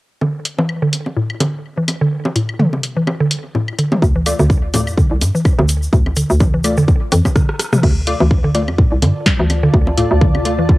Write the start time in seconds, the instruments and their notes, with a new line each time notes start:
0.21 synth arpeggio sound D3, low bongo
0.45 closed hi-hat
0.58 synth arpeggio sound E3, low bongo
0.69 high woodblock
0.82 synth arpeggio sound D3
0.93 closed hi-hat
1.06 low bongo
1.17 synth arpeggio sound A2
1.30 high woodblock
1.40 synth arpeggio sound D3, closed hi-hat, low bongo
1.78 synth arpeggio sound E3
1.88 closed hi-hat, low bongo, high woodblock
2.01 synth arpeggio sound D3
2.25 low bongo
2.36 synth arpeggio sound A2, closed hi-hat
2.49 high woodblock
2.59 synth arpeggio sound D3, mid tom
2.73 low bongo
2.83 closed hi-hat
2.97 synth arpeggio sound E3
3.07 low bongo, high woodblock
3.20 synth arpeggio sound D3
3.31 closed hi-hat
3.55 synth arpeggio sound A2, low bongo
3.68 high woodblock
3.78 synth arpeggio sound D3, closed hi-hat
3.92 mid tom, low bongo
4.02 fm bass D2, kick, shaker
4.16 synth arpeggio sound E3
4.26 synth stab A3 F4 D5, closed hi-hat, high woodblock, shaker
4.39 fm bass D2, synth arpeggio sound D3, low bongo, shaker
4.50 kick, shaker
4.74 synth arpeggio sound A2, synth stab A3 F4 D5, closed hi-hat, low bongo, shaker
4.87 fm bass F2, high woodblock, shaker
4.97 synth arpeggio sound D3, kick, shaker
5.11 fm bass C2
5.21 fm bass G2, closed hi-hat, low bongo, shaker
5.35 synth arpeggio sound E3, shaker
5.45 kick, high woodblock, shaker
5.59 fm bass D2, synth arpeggio sound D3, low bongo
5.68 closed hi-hat, shaker
5.83 shaker
5.93 fm bass D2, synth arpeggio sound A2, kick, shaker
6.06 low bongo, high woodblock
6.16 synth arpeggio sound D3, closed hi-hat, shaker
6.30 fm bass D2, shaker
6.40 kick, mid tom, low bongo, shaker
6.54 synth arpeggio sound E3
6.64 synth stab A3 F4 D5, closed hi-hat, high woodblock, shaker
6.77 fm bass F2, synth arpeggio sound D3, shaker
6.88 kick, low bongo, shaker
7.12 fm bass F2, synth arpeggio sound E3, closed hi-hat, shaker
7.25 kick, low bongo, high woodblock, shaker
7.36 synth arpeggio sound D3, kick, cross-stick, shaker
7.49 cross-stick
7.60 cross-stick, closed hi-hat, shaker
7.73 synth arpeggio sound C3, cross-stick, mid tom, low bongo, shaker
7.83 fm bass D2, synth arpeggio sound D3, ambient pad F4, kick, crash, low bongo, high woodblock
8.04 synth stab A3 F4 D5, ambient pad D5, closed hi-hat
8.20 fm bass D2, synth arpeggio sound E3, low bongo
8.31 kick
8.44 synth arpeggio sound D3
8.55 synth stab A3 F4 D5, closed hi-hat
8.68 fm bass F2, ambient pad A5, low bongo, high woodblock
8.78 synth arpeggio sound A2, kick
8.92 fm bass C2
9.02 fm bass G2, synth arpeggio sound D3, closed hi-hat, low bongo
9.26 kick, snare
9.39 fm bass D2, synth arpeggio sound E3
9.50 closed hi-hat, low bongo, high woodblock
9.63 synth arpeggio sound D3
9.74 fm bass D2, kick
9.87 low bongo
9.98 synth arpeggio sound A2, synth stab A3 F4 D5, closed hi-hat
10.11 fm bass D2
10.21 synth arpeggio sound D3, kick, mid tom
10.35 low bongo, high woodblock
10.45 synth stab A3 F4 D5, closed hi-hat
10.59 fm bass F2, synth arpeggio sound E3
10.69 kick, low bongo